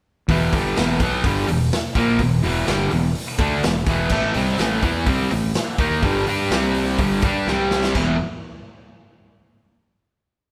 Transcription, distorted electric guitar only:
0.29 E2 B2 E3
0.53 G2 D3 G3
0.77 E2 B2 E3
1.00 B2 F#3 B3
1.24 G2 D3 G3
1.48 E2 B2
1.95 A#2 F3 A#3
2.20 E2 B2
2.43 E2 B2 E3
2.67 G2 D3 G3
2.91 E2 B2
3.38 D3 A3 D4
3.64 E2 B2
3.87 E2 B2 E3
4.11 A2 E3 A3
4.35 C3 G3 C4
4.59 A2 E3 A3
4.83 E3 B3 E4
5.07 C3 G3 C4
5.31 A2 E3
5.79 D#3 A#3 D#4
6.02 G2 D3 G3
6.27 G3 D4 G4
6.51 C3 G3 C4
6.98 G2 D3 G3
7.23 G3 D4 G4
7.47 C3 G3 C4
7.95 E2 B2 E3

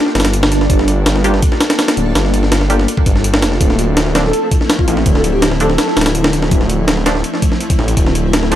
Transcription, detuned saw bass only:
0.15 G1
0.70 G1
1.97 D1
2.15 G1
3.06 G1
3.42 F1
3.61 D1
4.88 A1
5.06 D1
5.97 D1
6.51 D1
7.79 A1
7.97 D1

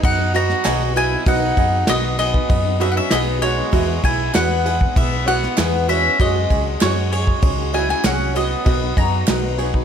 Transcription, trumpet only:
0.03 D#4
0.35 F#4
0.96 E4
1.27 D#4
1.88 B3
2.19 B3
2.80 C#4
2.91 D#4
2.96 C#4
3.12 B3
3.42 G#3
4.04 E4
4.34 B3
4.97 B3
5.28 B3
5.90 C#4
6.21 G#3
6.82 G#3
7.14 G#3
7.75 E4
7.91 E4
8.06 C#4
8.37 B3
8.99 F#4

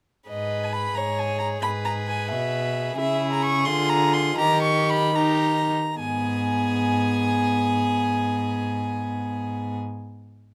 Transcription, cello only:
0.29 G#2
0.96 G#2
1.64 G#2
2.32 B2
2.98 C#3
3.66 D3
4.38 D#3
5.98 G#2

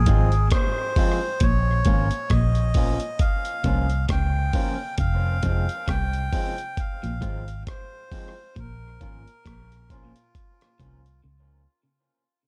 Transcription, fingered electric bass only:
0.08 G#1
1.42 A#1
1.86 G#1
2.31 A#1
3.65 C2
4.10 C#2
4.99 F1
5.44 F1
5.89 C2
7.04 A#1
7.23 G#1
8.57 A#1
9.02 G#1
9.46 A#1
10.80 C2
11.25 C#2

